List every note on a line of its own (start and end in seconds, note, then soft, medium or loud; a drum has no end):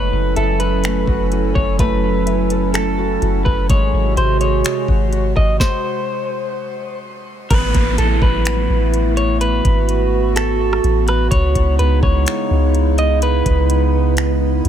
0.00 0.12 F#1 loud
0.00 3.66 F#3 medium
0.00 0.84 A3 loud
0.00 2.04 B3 medium
0.00 3.66 C#4 medium
0.00 2.02 E4 medium
0.00 3.66 E4 medium
0.00 3.66 A4 medium
0.00 0.33 B4 loud
0.00 0.75 B4 medium
0.00 0.36 C#5 medium
0.00 3.66 G#5 medium
0.13 0.35 F#1 loud
0.36 1.05 F#1 loud
0.36 0.59 A4 medium
0.36 2.09 E5 medium
0.36 closed hi-hat medium
0.60 2.50 A4 medium
0.60 1.51 B4 medium
0.60 closed hi-hat medium
0.84 1.79 A3 medium
0.84 finger snap loud
0.84 closed hi-hat medium
1.07 1.53 F#1 loud
1.07 1.31 F#4 medium
1.07 kick medium
1.32 2.97 F#4 medium
1.32 closed hi-hat medium
1.55 1.78 F#1 loud
1.55 1.78 C#5 medium
1.55 kick medium
1.79 3.18 F#1 loud
1.79 2.74 A3 loud
1.79 2.71 B4 medium
1.79 kick loud
1.79 closed hi-hat medium
2.26 3.99 E5 medium
2.26 closed hi-hat medium
2.50 3.75 A4 medium
2.50 closed hi-hat medium
2.74 3.75 A3 medium
2.74 3.42 A4 medium
2.74 finger snap loud
2.74 closed hi-hat medium
2.98 3.21 F#4 medium
3.21 3.45 F#1 loud
3.21 4.88 F#4 medium
3.21 closed hi-hat medium
3.45 3.69 F#1 loud
3.45 3.68 B4 medium
3.45 kick loud
3.69 3.92 G#1 loud
3.69 5.58 C3 medium
3.69 4.63 G#3 loud
3.69 5.58 G#3 medium
3.69 5.58 F#4 medium
3.69 4.15 C#5 loud
3.69 kick loud
3.69 closed hi-hat medium
3.93 4.16 G#1 loud
4.17 4.63 G#1 loud
4.17 4.40 C5 medium
4.17 5.60 C6 medium
4.17 closed hi-hat medium
4.41 6.68 G#4 medium
4.41 5.32 C#5 medium
4.41 closed hi-hat medium
4.64 7.56 G#3 medium
4.64 finger snap loud
4.64 closed hi-hat medium
4.88 5.34 G#1 loud
4.88 5.12 F#4 medium
4.88 kick medium
5.12 7.56 F#4 medium
5.12 closed hi-hat medium
5.36 5.59 G#1 loud
5.36 5.59 D#5 medium
5.36 kick loud
5.60 6.99 C5 loud
5.60 kick loud
5.60 snare loud
7.50 7.73 A1 loud
7.50 11.28 A3 medium
7.50 14.69 B3 medium
7.50 9.39 E4 medium
7.50 7.95 B4 loud
7.50 kick loud
7.50 closed hi-hat medium
7.50 downlifter medium
7.74 7.97 A1 loud
7.74 kick medium
7.74 closed hi-hat medium
7.98 8.21 A1 loud
7.98 8.21 A4 medium
7.98 closed hi-hat medium
8.22 8.68 A1 loud
8.22 9.13 B4 medium
8.22 kick loud
8.45 finger snap loud
8.45 closed hi-hat medium
8.70 9.61 A1 loud
8.94 closed hi-hat medium
9.17 9.40 C#5 medium
9.17 closed hi-hat medium
9.41 11.29 F#4 medium
9.41 10.32 B4 loud
9.41 closed hi-hat medium
9.65 10.80 G#1 loud
9.65 kick medium
9.65 closed hi-hat medium
9.89 closed hi-hat medium
10.36 11.04 A4 medium
10.36 finger snap loud
10.36 closed hi-hat medium
10.73 cross-stick loud
10.84 11.30 A1 loud
10.84 closed hi-hat medium
11.08 11.31 B4 medium
11.08 cross-stick medium
11.08 closed hi-hat medium
11.31 11.54 C#2 loud
11.31 14.69 C#3 medium
11.31 14.69 G#3 medium
11.31 14.69 D#4 medium
11.31 14.69 E4 medium
11.31 11.76 C#5 loud
11.31 kick loud
11.31 closed hi-hat medium
11.55 11.78 C#2 loud
11.55 kick medium
11.55 closed hi-hat medium
11.79 12.02 C#2 loud
11.79 12.02 B4 medium
11.79 closed hi-hat medium
12.03 12.26 C#2 loud
12.03 12.94 C#5 medium
12.03 kick loud
12.26 finger snap loud
12.26 closed hi-hat medium
12.51 13.42 C#2 loud
12.75 closed hi-hat medium
12.98 13.21 D#5 medium
12.98 closed hi-hat medium
13.22 14.61 B4 loud
13.22 closed hi-hat medium
13.46 14.61 C#2 loud
13.46 kick medium
13.46 closed hi-hat medium
13.70 closed hi-hat medium
14.17 finger snap loud
14.17 closed hi-hat medium
14.65 14.69 C#2 loud
14.65 closed hi-hat medium